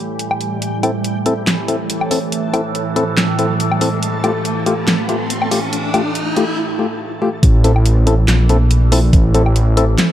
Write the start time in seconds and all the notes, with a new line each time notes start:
Already playing: A2 E3 G3 G4
0.19 closed hi-hat
0.31 low woodblock
0.41 closed hi-hat
0.62 A2 E3 A3 A4, closed hi-hat, riser
0.83 C4 E4 A4, closed hi-hat, low woodblock
1.04 closed hi-hat
1.26 C4 E4 A4, closed hi-hat
1.47 snare, clap, closed hi-hat
1.68 C4 E4 A4, closed hi-hat
1.90 closed hi-hat
2.01 low woodblock
2.11 C4 E4 A4, open hi-hat
2.32 closed hi-hat
2.53 C4 E4 A4, closed hi-hat, low woodblock
2.75 closed hi-hat
2.96 C4 E4 A4, closed hi-hat
3.17 snare, clap, closed hi-hat
3.39 C4 E4 A4, closed hi-hat
3.60 closed hi-hat
3.72 low woodblock
3.81 C4 E4 A4, open hi-hat
4.03 closed hi-hat
4.24 A3 F4 G4, closed hi-hat, low woodblock
4.45 closed hi-hat
4.66 A3 F4 G4, closed hi-hat
4.88 snare, clap, closed hi-hat
5.09 A3 F4 G4, closed hi-hat
5.30 closed hi-hat
5.42 low woodblock
5.51 A3 F4 G4, open hi-hat
5.73 closed hi-hat
5.94 A3 F4 G4, closed hi-hat, low woodblock
6.15 closed hi-hat
6.36 A3 F4 G4, closed hi-hat
6.79 A3 F4 G4
7.22 A3 F4 G4
7.43 A1 E3 A3, kick, closed hi-hat
7.64 C4 E4 A4, closed hi-hat
7.76 low woodblock
7.86 closed hi-hat
8.07 C4 E4 A4, closed hi-hat
8.28 A#1, snare, clap, closed hi-hat
8.49 C4 E4 A4, closed hi-hat
8.71 closed hi-hat
8.92 C4 E4 A4, open hi-hat
9.13 A1, kick, closed hi-hat
9.34 C4 E4 A4, closed hi-hat
9.46 low woodblock
9.56 closed hi-hat
9.77 C4 E4 A4, closed hi-hat
9.98 snare, clap, closed hi-hat